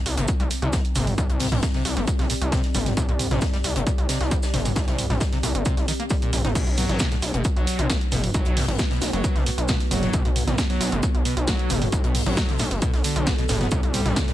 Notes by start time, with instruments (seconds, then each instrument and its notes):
Already playing: ambient pad C4 G4
0.06 analog synth bass C2, open hi-hat, shaker
0.17 analog synth bass G1, acid bass C3, closed hi-hat
0.28 kick, closed hi-hat, shaker
0.40 analog synth bass C2, acid bass G3, closed hi-hat
0.50 open hi-hat, shaker
0.62 analog synth bass C2, acid bass C3, closed hi-hat
0.73 acid bass A#2, kick, snare, closed hi-hat, shaker
0.85 closed hi-hat
0.95 analog synth bass G1, acid bass C3, mid tom, open hi-hat, shaker
1.07 mid tom, open hi-hat
1.16 analog synth bass C2, acid bass G3, ambient pad D5, kick, closed hi-hat, shaker
1.30 analog synth bass C2, closed hi-hat
1.40 acid bass C3, mid tom, open hi-hat
1.52 analog synth bass A#1, acid bass A#2, snare, closed hi-hat, mid tom
1.63 kick, snare, closed hi-hat, shaker
1.74 acid bass C3, snare, closed hi-hat
1.85 analog synth bass C2, open hi-hat, shaker
1.97 analog synth bass G1, acid bass G3, closed hi-hat
2.08 kick, closed hi-hat, shaker
2.19 analog synth bass C2, acid bass C3, snare, closed hi-hat
2.30 acid bass A#2, open hi-hat, shaker
2.42 analog synth bass C2, closed hi-hat
2.52 acid bass C3, kick, snare, closed hi-hat, shaker
2.64 snare, closed hi-hat
2.74 analog synth bass G1, acid bass G3, mid tom, open hi-hat, shaker
2.86 snare, closed hi-hat, mid tom
2.97 analog synth bass C2, acid bass C3, kick, closed hi-hat, shaker
3.09 analog synth bass C2, acid bass A#2, closed hi-hat
3.19 mid tom, open hi-hat, shaker
3.31 analog synth bass A#1, acid bass C3, snare, closed hi-hat, mid tom
3.41 kick, snare, closed hi-hat, shaker
3.53 acid bass G3, snare, closed hi-hat
3.64 analog synth bass C2, open hi-hat, shaker
3.76 analog synth bass G1, acid bass C3, closed hi-hat
3.87 acid bass A#2, kick, closed hi-hat, shaker
3.98 analog synth bass C2, closed hi-hat
4.09 acid bass C3, snare, open hi-hat, shaker
4.21 analog synth bass C2, snare, closed hi-hat
4.31 acid bass G3, kick, closed hi-hat, shaker
4.43 snare, closed hi-hat, shaker
4.54 analog synth bass G1, acid bass C3, snare, mid tom, open hi-hat
4.65 acid bass A#2, mid tom, open hi-hat, shaker
4.76 analog synth bass C2, kick, snare, closed hi-hat, shaker
4.87 analog synth bass C2, acid bass C3, snare, closed hi-hat
4.99 mid tom, open hi-hat, shaker
5.10 analog synth bass A#1, acid bass G3, snare, closed hi-hat, mid tom
5.20 kick, snare, closed hi-hat, shaker
5.32 acid bass C3, snare, closed hi-hat
5.43 analog synth bass C2, acid bass A#2, open hi-hat, shaker
5.55 analog synth bass G1, closed hi-hat
5.65 acid bass C3, kick, closed hi-hat, shaker
5.77 analog synth bass C2, snare, closed hi-hat
5.88 acid bass D#3, open hi-hat, shaker
6.00 acid bass A#3, closed hi-hat
6.10 acid bass G3, kick, open hi-hat, shaker
6.22 acid bass A#2, closed hi-hat
6.33 analog synth bass A#1, acid bass A#2, mid tom, open hi-hat, shaker
6.45 analog synth bass G1, acid bass D#4, snare, closed hi-hat, mid tom
6.55 analog synth bass B1, acid bass B2, ambient pad B3, kick, closed hi-hat, crash, shaker
6.67 analog synth bass B1, closed hi-hat
6.77 acid bass F#3, mid tom, open hi-hat, shaker
6.84 ambient pad F#4
6.89 analog synth bass A1, snare, closed hi-hat, mid tom
6.99 acid bass B2, kick, snare, closed hi-hat, shaker
7.12 acid bass A2, snare, closed hi-hat
7.22 analog synth bass B1, open hi-hat, shaker
7.34 analog synth bass F#1, acid bass B2, closed hi-hat
7.44 kick, closed hi-hat, shaker
7.57 analog synth bass B1, acid bass F#3, ambient pad B4, closed hi-hat
7.67 open hi-hat, shaker
7.79 analog synth bass B1, acid bass B2, closed hi-hat
7.90 acid bass A2, kick, snare, closed hi-hat, shaker
8.01 closed hi-hat
8.12 analog synth bass F#1, acid bass B2, mid tom, open hi-hat, shaker
8.24 mid tom, open hi-hat
8.34 analog synth bass B1, acid bass F#3, kick, closed hi-hat, shaker
8.45 analog synth bass B1, closed hi-hat
8.57 acid bass B2, mid tom, open hi-hat
8.68 analog synth bass A1, acid bass A2, snare, closed hi-hat, mid tom
8.78 kick, snare, closed hi-hat, shaker
8.91 acid bass B2, snare, closed hi-hat
9.01 analog synth bass B1, snare, open hi-hat, shaker
9.13 analog synth bass F#1, acid bass F#3, closed hi-hat
9.24 kick, closed hi-hat, shaker
9.35 analog synth bass B1, acid bass B2, snare, closed hi-hat
9.46 acid bass A2, open hi-hat, shaker
9.58 analog synth bass B1, closed hi-hat
9.68 acid bass B2, kick, snare, closed hi-hat, shaker
9.80 snare, closed hi-hat
9.91 analog synth bass F#1, acid bass F#3, mid tom, open hi-hat, shaker
10.02 snare, closed hi-hat, mid tom
10.13 analog synth bass B1, acid bass B2, kick, closed hi-hat, shaker
10.25 analog synth bass B1, acid bass A2, closed hi-hat
10.36 mid tom, open hi-hat, shaker
10.47 analog synth bass A1, acid bass B2, snare, closed hi-hat, mid tom
10.58 kick, snare, closed hi-hat, shaker
10.70 acid bass F#3, snare, closed hi-hat
10.81 analog synth bass B1, open hi-hat, shaker
10.92 analog synth bass F#1, acid bass B2, closed hi-hat
11.03 acid bass A2, kick, closed hi-hat, shaker
11.11 analog synth bass B1, ambient pad A4
11.15 closed hi-hat
11.25 acid bass B2, open hi-hat, shaker
11.37 analog synth bass B1, closed hi-hat
11.47 acid bass F#3, kick, snare, closed hi-hat, shaker
11.59 closed hi-hat
11.70 analog synth bass F#1, acid bass B2, mid tom, open hi-hat, shaker
11.82 acid bass A2, mid tom, open hi-hat
11.92 analog synth bass B1, kick, closed hi-hat, shaker
12.04 analog synth bass B1, acid bass B2, closed hi-hat
12.15 mid tom, open hi-hat
12.26 analog synth bass A1, acid bass F#3, snare, closed hi-hat, mid tom
12.37 kick, snare, closed hi-hat, shaker
12.49 acid bass B2, snare, closed hi-hat
12.59 analog synth bass B1, acid bass A2, snare, open hi-hat, shaker
12.71 analog synth bass F#1, closed hi-hat
12.82 acid bass B2, kick, closed hi-hat, shaker
12.94 analog synth bass B1, snare, closed hi-hat
13.04 acid bass D3, open hi-hat, shaker
13.16 analog synth bass B1, closed hi-hat
13.27 acid bass B2, kick, snare, closed hi-hat, shaker
13.38 acid bass B2, snare, closed hi-hat
13.48 analog synth bass F#1, acid bass A2, snare, mid tom, open hi-hat, shaker
13.61 acid bass B3, snare, closed hi-hat, mid tom
13.71 analog synth bass C2, acid bass C3, ambient pad C4, kick, closed hi-hat, shaker
13.83 analog synth bass C2, closed hi-hat
13.94 acid bass G3, mid tom, open hi-hat, shaker
14.06 analog synth bass A#1, snare, closed hi-hat, mid tom
14.16 acid bass C3, kick, snare, closed hi-hat, shaker
14.28 acid bass A#2, snare, closed hi-hat